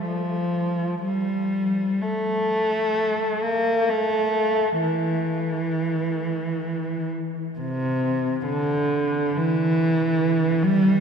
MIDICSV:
0, 0, Header, 1, 2, 480
1, 0, Start_track
1, 0, Tempo, 500000
1, 10561, End_track
2, 0, Start_track
2, 0, Title_t, "Cello"
2, 0, Program_c, 0, 42
2, 37, Note_on_c, 0, 53, 49
2, 963, Note_off_c, 0, 53, 0
2, 999, Note_on_c, 0, 55, 52
2, 1926, Note_off_c, 0, 55, 0
2, 1936, Note_on_c, 0, 57, 59
2, 3300, Note_on_c, 0, 58, 54
2, 3306, Note_off_c, 0, 57, 0
2, 3736, Note_on_c, 0, 57, 62
2, 3737, Note_off_c, 0, 58, 0
2, 4613, Note_off_c, 0, 57, 0
2, 4625, Note_on_c, 0, 52, 53
2, 6816, Note_off_c, 0, 52, 0
2, 7291, Note_on_c, 0, 48, 57
2, 8089, Note_off_c, 0, 48, 0
2, 8130, Note_on_c, 0, 50, 64
2, 8989, Note_on_c, 0, 52, 70
2, 8997, Note_off_c, 0, 50, 0
2, 10202, Note_on_c, 0, 55, 70
2, 10215, Note_off_c, 0, 52, 0
2, 10561, Note_off_c, 0, 55, 0
2, 10561, End_track
0, 0, End_of_file